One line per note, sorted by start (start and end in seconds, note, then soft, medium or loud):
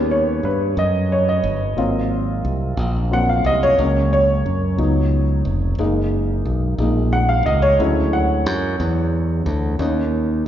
0.00 0.40 D#2 medium
0.00 0.73 G3 medium
0.00 0.73 B3 soft
0.00 0.73 C#4 medium
0.00 0.11 B4 medium
0.11 0.45 C#5 medium
0.43 0.74 G2 medium
0.43 0.75 B4 medium
0.77 1.40 F#2 medium
0.77 1.12 D#5 medium
1.12 1.27 C#5 medium
1.29 2.91 D#5 medium
1.44 1.75 G1 medium
1.77 2.41 G#1 medium
1.77 2.73 F#3 medium
1.77 2.74 A#3 soft
1.77 2.74 C4 soft
1.77 2.74 F4 medium
2.45 2.75 C2 medium
2.77 3.41 A#1 loud
3.11 3.41 F#3 soft
3.11 3.41 A#3 soft
3.11 3.42 C4 soft
3.11 3.42 F4 soft
3.11 3.30 F#5 loud
3.29 3.46 F5 medium
3.44 3.75 C2 medium
3.44 3.63 D#5 medium
3.63 4.11 C#5 loud
3.77 4.41 C#2 medium
3.77 4.22 F#3 soft
3.77 4.23 A#3 soft
3.77 4.23 C#4 medium
4.13 5.76 C#5 loud
4.46 4.76 F#2 medium
4.77 5.41 C#2 medium
4.77 5.23 F#3 medium
4.77 5.23 B3 soft
4.77 5.23 D#4 medium
5.45 5.76 F1 medium
5.78 6.42 F#1 medium
5.78 6.78 G#3 medium
5.78 6.78 A#3 soft
5.78 6.79 D#4 medium
6.45 6.76 B1 medium
6.78 7.42 A#1 medium
6.78 7.09 G#3 soft
6.78 7.10 A#3 soft
6.78 7.10 D#4 soft
7.13 7.30 F#5 medium
7.29 7.46 F5 medium
7.46 7.77 C#2 medium
7.46 7.63 D#5 medium
7.62 8.14 C#5 loud
7.79 8.46 D2 loud
7.79 8.24 F#3 medium
7.79 8.24 G#3 medium
7.79 8.24 C#4 medium
7.79 8.24 E4 medium
8.13 9.76 F#5 medium
8.46 8.77 F#2 medium
8.80 9.43 E2 medium
9.46 9.77 D2 loud
9.79 10.42 D#2 loud
9.79 10.48 A#3 medium
9.79 10.48 C#4 medium
9.79 10.48 D#4 medium